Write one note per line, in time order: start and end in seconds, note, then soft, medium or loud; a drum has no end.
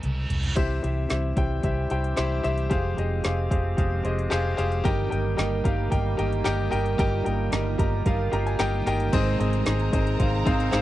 0.00 0.26 C2 medium
0.00 0.59 G#3 soft
0.00 0.59 C4 soft
0.00 0.59 D#4 medium
0.00 0.26 G#4 medium
0.00 0.59 A#4 medium
0.00 closed hi-hat medium
0.00 mid tom medium
0.00 reverse cymbal medium
0.30 0.53 C2 medium
0.30 closed hi-hat medium
0.30 floor tom medium
0.43 closed hi-hat soft
0.43 floor tom medium
0.56 0.79 C2 medium
0.56 1.33 C3 medium
0.56 2.69 E3 medium
0.56 2.69 G3 medium
0.56 2.69 C4 medium
0.56 0.76 E4 loud
0.56 0.76 G4 medium
0.56 6.95 G4 medium
0.56 0.76 C5 medium
0.56 0.76 E5 loud
0.56 kick medium
0.56 closed hi-hat medium
0.56 crash medium
0.82 1.06 C2 medium
0.82 1.02 E4 medium
0.82 1.03 G4 medium
0.82 1.03 C5 medium
0.82 1.03 E5 medium
0.82 closed hi-hat medium
1.09 1.33 C2 medium
1.09 1.29 E4 medium
1.09 1.29 G4 medium
1.09 1.30 C5 medium
1.09 1.30 E5 medium
1.09 snare loud
1.09 closed hi-hat medium
1.36 1.59 C2 medium
1.36 1.56 E4 medium
1.36 1.56 G4 medium
1.36 1.57 C5 medium
1.36 1.57 G5 medium
1.36 kick medium
1.36 closed hi-hat medium
1.63 1.86 C2 medium
1.63 1.83 E4 medium
1.63 1.83 G4 medium
1.63 1.83 C5 medium
1.63 1.84 E5 medium
1.63 kick medium
1.63 closed hi-hat medium
1.90 2.13 C2 medium
1.90 2.10 E4 medium
1.90 2.10 G4 medium
1.90 2.10 C5 medium
1.90 2.10 G5 medium
1.90 closed hi-hat medium
2.04 closed hi-hat soft
2.16 2.40 C2 medium
2.16 2.36 E4 loud
2.16 2.36 G4 loud
2.16 2.37 C5 loud
2.16 2.37 E5 loud
2.16 snare loud
2.16 closed hi-hat medium
2.43 2.67 C2 medium
2.43 2.63 E4 loud
2.43 2.63 G4 medium
2.43 2.63 C5 medium
2.43 2.64 E5 loud
2.43 closed hi-hat medium
2.58 closed hi-hat soft
2.70 2.93 F1 medium
2.70 4.82 F3 medium
2.70 4.83 G#3 medium
2.70 4.83 C4 medium
2.70 2.90 G4 loud
2.70 2.90 G#4 medium
2.70 2.90 C5 medium
2.70 2.90 F5 loud
2.70 kick loud
2.70 closed hi-hat medium
2.97 3.20 F1 medium
2.97 3.17 G4 medium
2.97 3.17 G#4 medium
2.97 3.17 C5 medium
2.97 3.18 D#5 medium
2.97 closed hi-hat medium
3.24 3.47 F1 medium
3.24 3.43 G4 medium
3.24 3.44 G#4 medium
3.24 3.44 C5 medium
3.24 3.44 F5 medium
3.24 snare loud
3.24 closed hi-hat medium
3.50 3.73 F1 medium
3.50 3.70 G4 medium
3.50 3.70 G#4 medium
3.50 3.70 C5 medium
3.50 3.71 F5 medium
3.50 kick medium
3.50 closed hi-hat medium
3.77 4.00 F1 loud
3.77 3.97 G4 medium
3.77 3.97 G#4 medium
3.77 3.97 C5 medium
3.77 3.98 F5 medium
3.77 kick medium
3.77 closed hi-hat medium
4.04 4.27 F1 medium
4.04 4.23 G4 medium
4.04 4.24 G#4 medium
4.04 4.24 C5 medium
4.04 4.24 D#5 medium
4.04 closed hi-hat medium
4.19 closed hi-hat soft
4.30 4.54 F1 medium
4.30 4.50 G4 loud
4.30 4.50 G#4 loud
4.30 4.51 C5 loud
4.30 4.51 F5 loud
4.30 snare loud
4.30 closed hi-hat medium
4.57 4.80 F1 medium
4.57 4.77 G4 loud
4.57 4.77 G#4 loud
4.57 4.77 C5 loud
4.57 4.77 F5 loud
4.57 closed hi-hat medium
4.72 closed hi-hat soft
4.84 5.07 G1 loud
4.84 5.61 G2 medium
4.84 9.09 D#3 medium
4.84 5.11 G3 medium
4.84 9.09 G3 medium
4.84 5.12 A#3 medium
4.84 9.09 A#3 medium
4.84 5.11 D#4 medium
4.84 5.04 G4 loud
4.84 5.04 A#4 loud
4.84 5.10 A#4 medium
4.84 5.04 D#5 loud
4.84 5.04 G5 loud
4.84 kick medium
4.84 closed hi-hat medium
5.10 5.34 G1 medium
5.10 5.38 A#3 soft
5.10 5.38 D#4 soft
5.10 5.30 G4 medium
5.10 5.30 A#4 medium
5.10 5.38 A#4 medium
5.10 5.31 D#5 medium
5.10 5.31 G5 medium
5.10 closed hi-hat medium
5.37 5.61 G1 medium
5.37 5.65 G3 medium
5.37 5.66 A#3 medium
5.37 5.65 D#4 medium
5.37 5.57 G4 medium
5.37 5.57 A#4 medium
5.37 5.63 A#4 medium
5.37 5.57 D#5 medium
5.37 5.58 G5 medium
5.37 snare loud
5.37 closed hi-hat medium
5.64 5.87 G1 medium
5.64 5.91 A#3 soft
5.64 5.92 D#4 medium
5.64 5.84 G4 medium
5.64 5.84 A#4 medium
5.64 5.92 A#4 medium
5.64 5.84 D#5 medium
5.64 5.85 F5 medium
5.64 kick medium
5.64 closed hi-hat medium
5.90 6.14 G1 loud
5.90 6.18 G3 medium
5.90 6.19 A#3 medium
5.90 6.18 D#4 medium
5.90 6.10 G4 medium
5.90 6.11 A#4 medium
5.90 6.17 A#4 medium
5.90 6.11 D#5 medium
5.90 6.11 G5 loud
5.90 kick medium
5.90 closed hi-hat medium
6.17 6.41 G1 medium
6.17 6.44 A#3 soft
6.17 6.45 D#4 medium
6.17 6.37 G4 medium
6.17 6.38 A#4 medium
6.17 6.45 A#4 medium
6.17 6.38 D#5 medium
6.17 6.38 G5 medium
6.17 closed hi-hat medium
6.32 closed hi-hat soft
6.44 6.68 G1 medium
6.44 6.98 G3 medium
6.44 6.98 A#3 medium
6.44 6.99 D#4 medium
6.44 6.64 G4 loud
6.44 6.64 A#4 loud
6.44 6.99 A#4 medium
6.44 6.65 D#5 loud
6.44 6.65 G5 loud
6.44 snare loud
6.44 closed hi-hat medium
6.70 6.94 G1 loud
6.70 6.91 G4 loud
6.70 6.91 A#4 medium
6.70 6.91 D#5 loud
6.70 6.91 G5 loud
6.70 closed hi-hat medium
6.86 closed hi-hat soft
6.98 7.21 G1 loud
6.98 7.75 G2 medium
6.98 7.26 G3 medium
6.98 7.26 A#3 loud
6.98 7.26 D#4 loud
6.98 9.11 F4 medium
6.98 7.18 G4 loud
6.98 7.18 A#4 loud
6.98 7.24 A#4 loud
6.98 7.18 D#5 loud
6.98 7.19 G5 loud
6.98 kick loud
6.98 closed hi-hat medium
7.24 7.48 G1 medium
7.24 7.52 A#3 soft
7.24 7.52 D#4 medium
7.24 7.44 G4 medium
7.24 7.44 A#4 medium
7.24 7.52 A#4 medium
7.24 7.45 D#5 medium
7.24 7.45 G5 medium
7.24 closed hi-hat medium
7.51 7.75 G1 medium
7.51 7.79 G3 medium
7.51 7.79 A#3 medium
7.51 7.79 D#4 medium
7.51 7.71 G4 medium
7.51 7.72 A#4 medium
7.51 7.78 A#4 loud
7.51 7.72 D#5 medium
7.51 7.72 A#5 medium
7.51 snare loud
7.51 closed hi-hat medium
7.78 8.01 G1 loud
7.78 8.05 A#3 medium
7.78 8.06 D#4 medium
7.78 7.98 G4 medium
7.78 7.98 A#4 medium
7.78 8.06 A#4 medium
7.78 7.98 D#5 medium
7.78 7.99 A#5 loud
7.78 kick medium
7.78 closed hi-hat medium
8.06 8.28 G1 loud
8.06 8.32 G3 medium
8.06 8.33 A#3 medium
8.06 8.33 D#4 medium
8.06 8.25 G4 medium
8.06 8.25 A#4 medium
8.06 8.31 A#4 medium
8.06 8.25 D#5 medium
8.06 8.26 F5 loud
8.06 kick medium
8.06 closed hi-hat medium
8.31 8.55 G1 medium
8.31 8.59 A#3 soft
8.31 8.60 D#4 soft
8.31 8.51 G4 medium
8.31 8.52 A#4 medium
8.31 8.59 A#4 medium
8.31 8.52 D#5 medium
8.31 8.45 G5 medium
8.31 8.52 A#5 loud
8.31 closed hi-hat medium
8.46 8.59 G#5 medium
8.46 closed hi-hat medium
8.59 8.82 G1 medium
8.59 9.13 G3 medium
8.59 9.13 A#3 medium
8.59 9.14 D#4 medium
8.59 8.78 G4 loud
8.59 8.79 A#4 loud
8.59 9.14 A#4 medium
8.59 8.79 D#5 loud
8.59 8.79 G5 loud
8.59 9.09 A#5 medium
8.59 snare loud
8.59 closed hi-hat medium
8.86 9.08 G1 loud
8.86 9.05 G4 loud
8.86 9.06 A#4 loud
8.86 9.06 D#5 loud
8.86 9.06 G5 loud
8.86 snare soft
8.86 closed hi-hat medium
9.00 closed hi-hat soft
9.12 9.35 G#1 loud
9.12 9.89 G#2 medium
9.12 9.40 G#2 medium
9.12 10.82 C3 medium
9.12 10.82 D#3 medium
9.12 9.40 D#3 medium
9.12 10.82 G#3 medium
9.12 9.40 G#3 medium
9.12 9.32 C4 loud
9.12 9.40 C4 medium
9.12 9.32 D#4 medium
9.12 10.82 D#4 medium
9.12 9.39 D#4 loud
9.12 9.32 G#4 loud
9.12 9.38 G#4 loud
9.12 10.82 A#4 medium
9.12 9.32 C5 loud
9.12 9.33 D#5 loud
9.12 10.82 A#5 medium
9.12 kick loud
9.12 closed hi-hat medium
9.12 crash medium
9.12 downlifter medium
9.39 9.62 G#1 medium
9.39 9.65 G#3 medium
9.39 9.59 C4 medium
9.39 9.66 C4 medium
9.39 9.59 D#4 medium
9.39 9.67 D#4 medium
9.39 9.66 G#4 medium
9.39 9.59 G#4 medium
9.39 9.59 C5 medium
9.39 9.59 D#5 medium
9.39 closed hi-hat medium
9.53 closed hi-hat medium
9.65 9.89 G#1 loud
9.65 10.48 G#3 medium
9.65 9.85 C4 medium
9.65 10.47 C4 medium
9.65 9.85 D#4 medium
9.65 10.46 D#4 medium
9.65 9.85 G#4 medium
9.65 10.46 G#4 medium
9.65 9.86 C5 medium
9.65 9.86 D#5 loud
9.65 snare loud
9.65 closed hi-hat medium
9.80 closed hi-hat soft
9.92 10.15 G#1 medium
9.92 10.12 C4 medium
9.92 10.12 D#4 medium
9.92 10.12 G#4 medium
9.92 10.12 C5 medium
9.92 10.13 D#5 medium
9.92 kick medium
9.92 closed hi-hat medium
10.07 closed hi-hat soft
10.19 10.42 G#1 loud
10.19 10.39 C4 medium
10.19 10.39 D#4 medium
10.19 10.39 G#4 medium
10.19 10.39 C5 medium
10.19 10.39 F5 medium
10.19 kick medium
10.19 closed hi-hat medium
10.45 10.68 G#1 medium
10.45 10.72 G#3 medium
10.45 10.65 C4 loud
10.45 10.73 C4 medium
10.45 10.65 D#4 loud
10.45 10.73 D#4 medium
10.45 10.66 G#4 loud
10.45 10.73 G#4 medium
10.45 10.66 C5 loud
10.45 10.66 F5 loud
10.45 kick medium
10.45 closed hi-hat medium
10.60 closed hi-hat medium
10.71 10.82 G#1 loud
10.71 10.82 G#3 medium
10.71 10.82 C4 loud
10.71 10.82 C4 medium
10.71 10.82 D#4 loud
10.71 10.82 D#4 medium
10.71 10.82 G#4 loud
10.71 10.82 G#4 medium
10.71 10.82 C5 loud
10.71 10.82 F5 loud
10.71 snare loud
10.71 closed hi-hat medium